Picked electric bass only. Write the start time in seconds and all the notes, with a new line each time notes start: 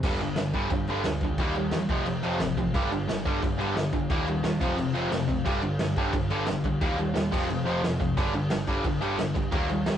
0.03 G1
0.36 G1
0.53 G1
0.70 G1
1.04 D2
1.38 D#2
1.72 E2
1.89 F1
2.06 F1
2.40 A1
2.74 G1
3.08 G1
3.25 G1
3.42 G1
3.76 G1
4.10 D#2
4.43 D#2
4.61 F1
4.77 F1
5.11 F1
5.45 G1
5.80 G1
5.97 G1
6.13 G1
6.48 G1
6.81 D#2
7.16 D#2
7.32 F1
7.50 F1
7.83 F1
8.17 G1
8.51 G1
8.67 G1
8.84 G1
9.18 G1
9.52 D#2
9.86 D#2